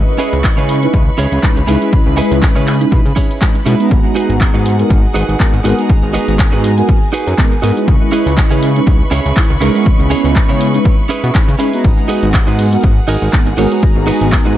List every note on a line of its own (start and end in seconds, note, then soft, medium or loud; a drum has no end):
0.00 0.79 G#3 medium
0.00 0.79 C#4 medium
0.00 0.80 E4 medium
0.00 0.80 B4 loud
0.00 3.87 B4 medium
0.00 0.79 D#5 medium
0.00 3.87 B5 medium
0.00 1.91 C#6 medium
0.08 shaker soft
0.18 0.38 C#4 loud
0.18 0.38 E4 loud
0.18 0.39 G#4 loud
0.18 0.39 B4 loud
0.18 open hi-hat loud
0.33 0.48 C#2 loud
0.33 closed hi-hat medium
0.33 shaker medium
0.44 kick loud
0.44 clap loud
0.44 closed hi-hat medium
0.44 shaker medium
0.57 0.87 C#3 medium
0.57 0.75 C#4 medium
0.57 0.76 E4 medium
0.57 0.76 G#4 medium
0.57 0.76 B4 loud
0.57 closed hi-hat soft
0.57 shaker soft
0.69 open hi-hat loud
0.82 1.03 G#3 medium
0.82 1.03 C#4 medium
0.82 1.03 D#4 medium
0.82 1.03 E4 medium
0.82 1.03 B4 loud
0.82 closed hi-hat medium
0.82 shaker medium
0.93 1.10 C#2 medium
0.93 muted clean electric guitar stroke soft
0.93 kick loud
0.93 closed hi-hat medium
0.93 shaker medium
1.08 shaker soft
1.18 1.27 C#2 medium
1.18 1.43 C#4 loud
1.18 1.43 E4 loud
1.18 1.43 G#4 loud
1.18 1.44 C#5 loud
1.18 open hi-hat loud
1.32 1.39 C#2 medium
1.32 closed hi-hat medium
1.32 shaker medium
1.43 1.57 G#3 loud
1.43 1.58 C#4 medium
1.43 1.58 D#4 medium
1.43 1.58 E4 medium
1.43 1.58 B4 loud
1.43 kick loud
1.43 clap loud
1.43 closed hi-hat medium
1.43 shaker medium
1.57 1.64 C#2 loud
1.57 closed hi-hat soft
1.57 shaker soft
1.67 1.77 C#2 loud
1.67 1.78 G#3 medium
1.67 1.92 C#4 medium
1.67 1.78 C#4 medium
1.67 1.78 D#4 medium
1.67 1.93 E4 medium
1.67 1.79 E4 medium
1.67 1.93 G#4 medium
1.67 1.79 B4 loud
1.67 1.93 B4 loud
1.67 open hi-hat loud
1.81 2.77 G#3 medium
1.81 2.77 C#4 medium
1.81 2.78 E4 medium
1.81 2.78 B4 loud
1.81 2.78 D#5 medium
1.81 closed hi-hat medium
1.81 shaker medium
1.93 2.04 C#2 soft
1.93 kick loud
1.93 closed hi-hat medium
1.93 shaker medium
2.06 2.21 C#2 medium
2.06 shaker soft
2.17 2.36 C#4 loud
2.17 2.37 E4 loud
2.17 2.37 G#4 loud
2.17 2.37 B4 loud
2.17 open hi-hat loud
2.31 2.46 C#2 loud
2.31 closed hi-hat medium
2.31 shaker medium
2.42 kick loud
2.42 clap loud
2.42 closed hi-hat medium
2.42 shaker medium
2.55 2.85 C#3 medium
2.55 2.74 C#4 medium
2.55 2.74 E4 medium
2.55 2.74 G#4 medium
2.55 2.74 B4 loud
2.55 closed hi-hat soft
2.55 shaker soft
2.67 clap medium
2.67 open hi-hat loud
2.80 3.01 G#3 medium
2.80 3.01 C#4 medium
2.80 3.02 D#4 medium
2.80 3.02 E4 medium
2.80 3.02 B4 loud
2.80 closed hi-hat medium
2.80 shaker medium
2.91 3.01 B2 medium
2.91 muted clean electric guitar stroke soft
2.91 kick loud
2.91 closed hi-hat medium
2.91 shaker medium
3.06 3.13 C#3 loud
3.06 closed hi-hat soft
3.06 shaker soft
3.16 3.41 C#4 loud
3.16 3.41 E4 loud
3.16 3.42 G#4 loud
3.16 3.42 C#5 loud
3.16 kick medium
3.16 open hi-hat loud
3.31 closed hi-hat medium
3.31 shaker medium
3.41 3.56 G#3 loud
3.41 3.56 C#4 medium
3.41 3.56 D#4 medium
3.41 3.56 E4 medium
3.41 3.56 B4 loud
3.41 kick loud
3.41 clap loud
3.41 closed hi-hat medium
3.41 shaker medium
3.55 closed hi-hat soft
3.55 shaker soft
3.66 3.75 B2 medium
3.66 3.77 G#3 loud
3.66 3.91 C#4 medium
3.66 3.77 C#4 medium
3.66 3.77 D#4 medium
3.66 3.91 E4 medium
3.66 3.77 E4 medium
3.66 3.91 G#4 medium
3.66 3.77 B4 loud
3.66 3.92 B4 loud
3.66 open hi-hat loud
3.79 4.76 G#3 medium
3.79 4.76 B3 medium
3.79 4.76 D#4 medium
3.79 4.76 F#4 medium
3.79 4.76 A#5 loud
3.79 closed hi-hat medium
3.79 shaker medium
3.91 4.00 G#1 loud
3.91 7.84 G#4 medium
3.91 5.88 F#5 medium
3.91 kick loud
3.91 closed hi-hat medium
3.91 shaker medium
4.05 shaker soft
4.15 4.35 D#4 loud
4.15 4.35 F#4 loud
4.15 4.35 G#4 loud
4.15 4.36 B4 loud
4.15 open hi-hat loud
4.29 4.44 G#1 loud
4.29 closed hi-hat medium
4.29 shaker medium
4.41 kick loud
4.41 clap loud
4.41 closed hi-hat medium
4.41 shaker medium
4.54 4.84 G#2 medium
4.54 4.72 D#4 medium
4.54 4.72 F#4 medium
4.54 4.73 G#4 medium
4.54 4.73 B4 loud
4.54 closed hi-hat soft
4.54 shaker soft
4.66 open hi-hat loud
4.79 5.00 G#3 medium
4.79 5.00 B3 medium
4.79 5.00 D#4 medium
4.79 5.00 F#4 medium
4.79 5.00 A#4 loud
4.79 closed hi-hat medium
4.79 shaker medium
4.90 5.07 G#1 medium
4.90 muted clean electric guitar stroke soft
4.90 kick loud
4.90 closed hi-hat medium
4.90 shaker medium
5.04 shaker soft
5.14 5.24 G#1 medium
5.14 5.40 D#4 loud
5.14 5.40 F#4 loud
5.14 5.40 G#4 loud
5.14 5.40 B4 loud
5.14 open hi-hat loud
5.29 5.36 G#1 medium
5.29 closed hi-hat medium
5.29 shaker medium
5.40 5.54 G#3 medium
5.40 5.54 B3 medium
5.40 5.54 D#4 medium
5.40 5.54 F#4 medium
5.40 5.55 A#4 loud
5.40 kick loud
5.40 clap loud
5.40 closed hi-hat medium
5.40 shaker medium
5.54 5.61 G#1 loud
5.54 closed hi-hat soft
5.54 shaker soft
5.64 5.73 G#1 loud
5.64 5.75 G#3 loud
5.64 5.75 B3 medium
5.64 5.89 D#4 medium
5.64 5.75 D#4 medium
5.64 5.89 F#4 medium
5.64 5.75 F#4 medium
5.64 5.90 G#4 medium
5.64 5.75 A#4 loud
5.64 5.90 B4 loud
5.64 open hi-hat loud
5.78 6.74 G#3 medium
5.78 6.74 B3 medium
5.78 6.74 D#4 medium
5.78 6.74 F#4 medium
5.78 6.75 A#5 loud
5.78 closed hi-hat medium
5.78 shaker medium
5.89 6.01 G#1 soft
5.89 7.86 G#5 medium
5.89 kick loud
5.89 closed hi-hat medium
5.89 shaker medium
6.03 6.18 G#1 medium
6.03 shaker soft
6.14 6.33 D#4 loud
6.14 6.33 F#4 loud
6.14 6.34 G#4 loud
6.14 6.34 B4 loud
6.14 open hi-hat loud
6.28 6.43 G#1 loud
6.28 closed hi-hat medium
6.28 shaker medium
6.39 kick loud
6.39 clap loud
6.39 closed hi-hat medium
6.39 shaker medium
6.52 6.82 G#2 medium
6.52 6.70 D#4 medium
6.52 6.71 F#4 medium
6.52 6.71 G#4 medium
6.52 6.71 B4 loud
6.52 closed hi-hat soft
6.52 shaker soft
6.64 open hi-hat loud
6.77 6.98 G#3 medium
6.77 6.98 B3 medium
6.77 6.98 D#4 medium
6.77 6.98 F#4 medium
6.77 6.98 A#4 loud
6.77 closed hi-hat medium
6.77 shaker medium
6.88 muted clean electric guitar stroke soft
6.88 kick loud
6.88 closed hi-hat medium
6.88 shaker medium
7.03 shaker soft
7.13 7.38 D#4 loud
7.13 7.38 F#4 loud
7.13 7.38 G#4 loud
7.13 7.39 B4 loud
7.13 open hi-hat loud
7.27 7.34 F#2 medium
7.27 closed hi-hat medium
7.27 shaker medium
7.38 7.52 G#3 medium
7.38 7.53 B3 medium
7.38 7.53 D#4 medium
7.38 7.53 F#4 medium
7.38 7.53 A#4 loud
7.38 kick loud
7.38 clap loud
7.38 closed hi-hat medium
7.38 shaker medium
7.52 closed hi-hat soft
7.52 shaker soft
7.62 7.72 G#2 medium
7.62 7.73 G#3 medium
7.62 7.73 B3 medium
7.62 7.87 D#4 medium
7.62 7.74 D#4 medium
7.62 7.88 F#4 medium
7.62 7.74 F#4 medium
7.62 7.88 G#4 medium
7.62 7.74 A#4 loud
7.62 7.88 B4 loud
7.62 open hi-hat loud
7.76 8.72 G#3 medium
7.76 8.73 C#4 medium
7.76 8.73 E4 medium
7.76 8.73 B4 loud
7.76 8.73 D#5 medium
7.76 closed hi-hat medium
7.76 shaker medium
7.88 7.97 C#2 loud
7.88 11.81 B4 medium
7.88 11.81 B5 medium
7.88 11.81 C#6 loud
7.88 kick loud
7.88 closed hi-hat medium
7.88 shaker medium
8.02 shaker soft
8.12 8.31 C#4 loud
8.12 8.32 E4 loud
8.12 8.32 G#4 loud
8.12 8.32 B4 loud
8.12 open hi-hat loud
8.26 8.41 C#2 loud
8.26 closed hi-hat medium
8.26 shaker medium
8.38 kick loud
8.38 clap loud
8.38 closed hi-hat medium
8.38 shaker medium
8.50 8.80 C#3 medium
8.50 8.69 C#4 medium
8.50 8.69 E4 medium
8.50 8.69 G#4 medium
8.50 8.70 B4 loud
8.50 closed hi-hat soft
8.50 shaker soft
8.62 open hi-hat loud
8.76 8.96 G#3 medium
8.76 8.97 C#4 medium
8.76 8.97 D#4 medium
8.76 8.97 E4 medium
8.76 8.97 B4 loud
8.76 closed hi-hat medium
8.76 shaker medium
8.86 9.04 C#2 medium
8.86 muted clean electric guitar stroke soft
8.86 kick loud
8.86 closed hi-hat medium
8.86 shaker medium
9.01 shaker soft
9.11 9.20 C#2 medium
9.11 9.36 C#4 loud
9.11 9.36 E4 loud
9.11 9.37 G#4 loud
9.11 9.37 C#5 loud
9.11 open hi-hat loud
9.25 9.33 C#2 medium
9.25 closed hi-hat medium
9.25 shaker medium
9.36 9.51 G#3 loud
9.36 9.51 C#4 medium
9.36 9.51 D#4 medium
9.36 9.51 E4 medium
9.36 9.51 B4 loud
9.36 kick loud
9.36 clap loud
9.36 closed hi-hat medium
9.36 shaker medium
9.50 9.57 C#2 loud
9.50 closed hi-hat soft
9.50 shaker soft
9.61 9.70 C#2 loud
9.61 9.72 G#3 medium
9.61 9.86 C#4 medium
9.61 9.72 C#4 medium
9.61 9.72 D#4 medium
9.61 9.86 E4 medium
9.61 9.72 E4 medium
9.61 9.86 G#4 medium
9.61 9.87 A#4 loud
9.61 9.72 B4 loud
9.61 open hi-hat loud
9.75 10.71 G#3 medium
9.75 10.72 B3 loud
9.75 10.71 C#4 medium
9.75 10.71 E4 medium
9.75 10.71 D#5 medium
9.75 closed hi-hat medium
9.75 shaker medium
9.86 9.97 C#2 soft
9.86 kick loud
9.86 closed hi-hat medium
9.86 shaker medium
10.00 10.15 C#2 medium
10.00 closed hi-hat soft
10.00 shaker soft
10.10 10.30 C#4 loud
10.10 10.30 E4 loud
10.10 10.30 G#4 loud
10.10 10.31 C#5 loud
10.10 open hi-hat loud
10.24 10.39 C#2 loud
10.24 closed hi-hat medium
10.24 shaker medium
10.36 kick loud
10.36 clap loud
10.36 closed hi-hat medium
10.36 shaker medium
10.49 10.79 C#3 medium
10.49 10.67 C#4 medium
10.49 10.67 E4 medium
10.49 10.68 G#4 medium
10.49 10.68 C#5 loud
10.49 closed hi-hat soft
10.49 shaker soft
10.61 open hi-hat loud
10.74 10.95 G#3 medium
10.74 10.95 C#4 medium
10.74 10.95 D#4 medium
10.74 10.95 E4 medium
10.74 10.95 B4 loud
10.74 closed hi-hat medium
10.74 shaker medium
10.84 muted clean electric guitar stroke soft
10.84 kick loud
10.84 closed hi-hat medium
10.84 shaker medium
10.99 shaker soft
11.09 11.34 C#4 loud
11.09 11.35 E4 loud
11.09 11.35 G#4 loud
11.09 11.35 B4 loud
11.09 open hi-hat loud
11.24 11.31 B2 medium
11.24 closed hi-hat medium
11.24 shaker medium
11.34 11.49 G#3 loud
11.34 11.49 C#4 medium
11.34 11.49 D#4 medium
11.34 11.49 E4 medium
11.34 11.49 B4 loud
11.34 kick loud
11.34 clap loud
11.34 closed hi-hat medium
11.34 shaker medium
11.48 11.56 C#3 loud
11.48 closed hi-hat soft
11.48 shaker soft
11.59 11.70 G#3 loud
11.59 11.84 C#4 medium
11.59 11.70 C#4 medium
11.59 11.70 D#4 medium
11.59 11.84 E4 medium
11.59 11.70 E4 medium
11.59 11.85 G#4 medium
11.59 11.70 B4 loud
11.59 11.85 B4 medium
11.59 open hi-hat loud
11.73 12.69 G#3 medium
11.73 12.69 B3 medium
11.73 12.69 D#4 medium
11.73 12.70 F#4 medium
11.73 12.70 A#5 loud
11.73 closed hi-hat soft
11.73 shaker medium
11.84 11.93 G#1 loud
11.84 14.57 G#4 medium
11.84 13.81 F#5 medium
11.84 kick loud
11.84 closed hi-hat medium
11.84 ride medium
11.84 shaker medium
11.98 shaker soft
12.08 12.28 D#4 loud
12.08 12.28 F#4 loud
12.08 12.29 G#4 loud
12.08 12.29 B4 loud
12.08 open hi-hat loud
12.08 ride medium
12.23 12.38 G#1 loud
12.23 closed hi-hat medium
12.23 shaker medium
12.34 kick loud
12.34 clap loud
12.34 closed hi-hat medium
12.34 ride medium
12.34 shaker medium
12.47 12.77 G#2 medium
12.47 12.65 D#4 medium
12.47 12.66 F#4 medium
12.47 12.66 G#4 medium
12.47 12.66 B4 loud
12.47 closed hi-hat soft
12.47 shaker soft
12.59 open hi-hat loud
12.59 ride medium
12.72 12.93 G#3 medium
12.72 12.93 B3 medium
12.72 12.93 D#4 medium
12.72 12.93 F#4 medium
12.72 12.93 A#4 loud
12.72 closed hi-hat medium
12.72 shaker medium
12.83 13.00 G#1 medium
12.83 muted clean electric guitar stroke soft
12.83 kick loud
12.83 closed hi-hat medium
12.83 ride medium
12.83 shaker medium
12.97 shaker soft
13.08 13.17 G#1 medium
13.08 13.33 D#4 loud
13.08 13.33 F#4 loud
13.08 13.33 G#4 loud
13.08 13.34 A#4 loud
13.08 open hi-hat loud
13.08 ride medium
13.22 13.29 G#1 medium
13.22 closed hi-hat medium
13.22 shaker medium
13.33 13.47 G#3 loud
13.33 13.48 B3 medium
13.33 13.48 D#4 medium
13.33 13.48 F#4 medium
13.33 13.48 A#4 loud
13.33 kick loud
13.33 clap loud
13.33 closed hi-hat medium
13.33 ride medium
13.33 shaker medium
13.47 13.54 G#1 loud
13.47 closed hi-hat soft
13.47 shaker soft
13.57 13.67 G#1 loud
13.57 13.68 G#3 loud
13.57 13.68 B3 medium
13.57 13.82 D#4 medium
13.57 13.68 D#4 medium
13.57 13.83 F#4 medium
13.57 13.69 F#4 medium
13.57 13.83 G#4 medium
13.57 13.69 A#4 loud
13.57 13.83 C#5 loud
13.57 open hi-hat loud
13.57 ride medium
13.71 14.57 G#3 medium
13.71 14.57 B3 medium
13.71 14.57 D#4 medium
13.71 14.57 F#4 medium
13.71 14.57 A#5 loud
13.71 closed hi-hat medium
13.71 shaker medium
13.83 13.94 G#1 soft
13.83 14.57 G#5 medium
13.83 kick loud
13.83 closed hi-hat medium
13.83 ride medium
13.83 shaker medium
13.96 14.11 G#1 medium
13.96 shaker soft
14.07 14.26 D#4 loud
14.07 14.27 F#4 loud
14.07 14.27 G#4 loud
14.07 14.27 B4 loud
14.07 open hi-hat loud
14.07 ride medium
14.21 14.36 G#1 loud
14.21 closed hi-hat medium
14.21 shaker medium
14.32 kick loud
14.32 clap loud
14.32 closed hi-hat medium
14.32 ride medium
14.32 shaker medium
14.45 14.57 G#2 medium
14.45 14.57 D#4 medium
14.45 14.57 F#4 medium
14.45 14.57 G#4 medium
14.45 14.57 B4 loud
14.45 closed hi-hat soft
14.45 shaker soft